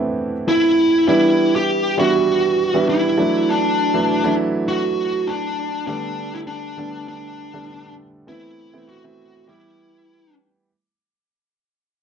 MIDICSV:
0, 0, Header, 1, 3, 480
1, 0, Start_track
1, 0, Key_signature, 1, "minor"
1, 0, Tempo, 600000
1, 859, Time_signature, 4, 2, 24, 8
1, 9618, End_track
2, 0, Start_track
2, 0, Title_t, "Lead electric guitar"
2, 0, Program_c, 0, 29
2, 388, Note_on_c, 0, 64, 92
2, 857, Note_off_c, 0, 64, 0
2, 867, Note_on_c, 0, 64, 106
2, 1243, Note_off_c, 0, 64, 0
2, 1246, Note_on_c, 0, 67, 101
2, 1592, Note_off_c, 0, 67, 0
2, 1595, Note_on_c, 0, 66, 118
2, 2310, Note_off_c, 0, 66, 0
2, 2313, Note_on_c, 0, 64, 98
2, 2793, Note_on_c, 0, 62, 89
2, 2800, Note_off_c, 0, 64, 0
2, 3474, Note_off_c, 0, 62, 0
2, 3746, Note_on_c, 0, 66, 116
2, 4216, Note_on_c, 0, 62, 103
2, 4236, Note_off_c, 0, 66, 0
2, 4686, Note_off_c, 0, 62, 0
2, 4696, Note_on_c, 0, 62, 102
2, 5072, Note_on_c, 0, 64, 92
2, 5080, Note_off_c, 0, 62, 0
2, 5112, Note_off_c, 0, 64, 0
2, 5176, Note_on_c, 0, 62, 90
2, 5655, Note_off_c, 0, 62, 0
2, 5665, Note_on_c, 0, 62, 82
2, 6350, Note_off_c, 0, 62, 0
2, 6626, Note_on_c, 0, 64, 102
2, 7105, Note_off_c, 0, 64, 0
2, 7108, Note_on_c, 0, 66, 100
2, 7587, Note_off_c, 0, 66, 0
2, 7590, Note_on_c, 0, 64, 89
2, 8272, Note_off_c, 0, 64, 0
2, 9618, End_track
3, 0, Start_track
3, 0, Title_t, "Grand piano"
3, 0, Program_c, 1, 0
3, 0, Control_c, 1, 64, 127
3, 0, Note_on_c, 1, 52, 77
3, 0, Note_on_c, 1, 57, 73
3, 0, Note_on_c, 1, 59, 74
3, 0, Note_on_c, 1, 60, 71
3, 0, Note_on_c, 1, 62, 85
3, 0, Note_on_c, 1, 64, 88
3, 262, Note_off_c, 1, 52, 0
3, 262, Note_off_c, 1, 57, 0
3, 264, Note_off_c, 1, 59, 0
3, 265, Note_off_c, 1, 60, 0
3, 267, Note_off_c, 1, 64, 0
3, 859, Note_on_c, 1, 52, 73
3, 861, Note_on_c, 1, 55, 68
3, 861, Note_on_c, 1, 59, 68
3, 864, Note_off_c, 1, 62, 0
3, 864, Note_on_c, 1, 62, 64
3, 867, Note_on_c, 1, 64, 82
3, 870, Control_c, 1, 64, 0
3, 983, Control_c, 1, 64, 127
3, 1397, Note_off_c, 1, 52, 0
3, 1398, Note_off_c, 1, 55, 0
3, 1398, Note_off_c, 1, 59, 0
3, 1400, Note_off_c, 1, 62, 0
3, 1401, Note_off_c, 1, 64, 0
3, 1578, Note_on_c, 1, 52, 76
3, 1579, Note_on_c, 1, 55, 66
3, 1582, Note_on_c, 1, 59, 67
3, 1584, Note_on_c, 1, 62, 72
3, 1588, Note_on_c, 1, 64, 83
3, 2026, Note_off_c, 1, 52, 0
3, 2026, Note_off_c, 1, 55, 0
3, 2028, Note_off_c, 1, 59, 0
3, 2029, Note_off_c, 1, 62, 0
3, 2031, Note_off_c, 1, 64, 0
3, 2190, Note_on_c, 1, 52, 76
3, 2192, Note_on_c, 1, 55, 74
3, 2195, Note_on_c, 1, 59, 71
3, 2197, Note_on_c, 1, 62, 69
3, 2200, Note_on_c, 1, 64, 88
3, 2527, Note_off_c, 1, 52, 0
3, 2533, Note_off_c, 1, 62, 0
3, 2538, Note_off_c, 1, 64, 0
3, 2539, Note_off_c, 1, 55, 0
3, 2539, Note_on_c, 1, 52, 81
3, 2541, Note_off_c, 1, 59, 0
3, 2541, Note_on_c, 1, 54, 76
3, 2541, Note_on_c, 1, 57, 72
3, 2545, Note_on_c, 1, 62, 76
3, 2550, Note_on_c, 1, 64, 93
3, 2551, Control_c, 1, 64, 0
3, 2696, Control_c, 1, 64, 127
3, 3019, Note_off_c, 1, 52, 0
3, 3020, Note_off_c, 1, 54, 0
3, 3020, Note_off_c, 1, 57, 0
3, 3022, Note_off_c, 1, 62, 0
3, 3024, Note_off_c, 1, 64, 0
3, 3151, Note_on_c, 1, 52, 82
3, 3153, Note_on_c, 1, 57, 75
3, 3154, Note_on_c, 1, 54, 77
3, 3158, Note_on_c, 1, 62, 75
3, 3160, Note_on_c, 1, 64, 86
3, 3322, Note_off_c, 1, 52, 0
3, 3323, Note_off_c, 1, 57, 0
3, 3324, Note_off_c, 1, 54, 0
3, 3326, Note_off_c, 1, 62, 0
3, 3327, Note_off_c, 1, 64, 0
3, 3389, Note_on_c, 1, 52, 96
3, 3393, Note_on_c, 1, 54, 85
3, 3395, Note_on_c, 1, 62, 90
3, 3396, Note_on_c, 1, 57, 84
3, 3398, Note_on_c, 1, 64, 107
3, 4099, Note_off_c, 1, 52, 0
3, 4101, Note_off_c, 1, 54, 0
3, 4102, Note_off_c, 1, 62, 0
3, 4103, Note_off_c, 1, 57, 0
3, 4104, Note_off_c, 1, 64, 0
3, 4697, Note_on_c, 1, 50, 75
3, 4700, Note_on_c, 1, 55, 69
3, 4703, Note_on_c, 1, 57, 72
3, 4703, Note_on_c, 1, 59, 71
3, 4707, Note_on_c, 1, 62, 83
3, 4708, Control_c, 1, 64, 0
3, 4870, Control_c, 1, 64, 127
3, 5236, Note_off_c, 1, 50, 0
3, 5237, Note_off_c, 1, 55, 0
3, 5239, Note_off_c, 1, 57, 0
3, 5239, Note_off_c, 1, 59, 0
3, 5241, Note_off_c, 1, 62, 0
3, 5417, Note_on_c, 1, 50, 78
3, 5421, Note_on_c, 1, 55, 69
3, 5424, Note_on_c, 1, 57, 69
3, 5427, Note_on_c, 1, 59, 73
3, 5429, Note_on_c, 1, 62, 89
3, 5865, Note_off_c, 1, 50, 0
3, 5867, Note_off_c, 1, 55, 0
3, 5869, Note_off_c, 1, 57, 0
3, 5871, Note_off_c, 1, 59, 0
3, 5871, Note_off_c, 1, 62, 0
3, 6027, Note_on_c, 1, 50, 78
3, 6029, Note_on_c, 1, 55, 70
3, 6030, Note_on_c, 1, 57, 74
3, 6034, Note_on_c, 1, 59, 71
3, 6036, Note_on_c, 1, 62, 84
3, 6469, Note_off_c, 1, 50, 0
3, 6470, Note_off_c, 1, 55, 0
3, 6471, Note_off_c, 1, 57, 0
3, 6473, Note_off_c, 1, 59, 0
3, 6474, Note_off_c, 1, 62, 0
3, 6615, Note_on_c, 1, 52, 75
3, 6619, Note_on_c, 1, 57, 67
3, 6623, Note_on_c, 1, 59, 73
3, 6624, Note_on_c, 1, 60, 66
3, 6627, Note_on_c, 1, 64, 84
3, 6631, Control_c, 1, 64, 0
3, 6756, Control_c, 1, 64, 127
3, 6886, Note_off_c, 1, 52, 0
3, 6888, Note_off_c, 1, 57, 0
3, 6890, Note_off_c, 1, 59, 0
3, 6891, Note_off_c, 1, 60, 0
3, 6892, Note_off_c, 1, 64, 0
3, 6988, Note_on_c, 1, 57, 72
3, 6989, Note_on_c, 1, 52, 80
3, 6993, Note_on_c, 1, 59, 72
3, 6995, Note_on_c, 1, 60, 70
3, 6999, Note_on_c, 1, 64, 82
3, 7161, Note_off_c, 1, 52, 0
3, 7161, Note_off_c, 1, 57, 0
3, 7163, Note_off_c, 1, 59, 0
3, 7164, Note_off_c, 1, 60, 0
3, 7166, Note_off_c, 1, 64, 0
3, 7228, Note_on_c, 1, 52, 80
3, 7232, Note_on_c, 1, 57, 69
3, 7234, Note_on_c, 1, 59, 70
3, 7234, Note_on_c, 1, 60, 74
3, 7237, Note_on_c, 1, 64, 91
3, 7563, Note_off_c, 1, 52, 0
3, 7568, Note_off_c, 1, 59, 0
3, 7571, Note_off_c, 1, 64, 0
3, 7575, Note_on_c, 1, 52, 82
3, 7578, Note_on_c, 1, 55, 77
3, 7580, Note_off_c, 1, 57, 0
3, 7580, Note_off_c, 1, 60, 0
3, 7580, Note_on_c, 1, 59, 72
3, 7583, Note_on_c, 1, 64, 70
3, 7586, Note_on_c, 1, 67, 86
3, 7588, Control_c, 1, 64, 0
3, 7726, Control_c, 1, 64, 127
3, 8350, Note_off_c, 1, 52, 0
3, 8351, Note_off_c, 1, 55, 0
3, 8352, Note_off_c, 1, 59, 0
3, 8354, Note_off_c, 1, 64, 0
3, 8355, Note_off_c, 1, 67, 0
3, 8550, Control_c, 1, 64, 0
3, 9618, End_track
0, 0, End_of_file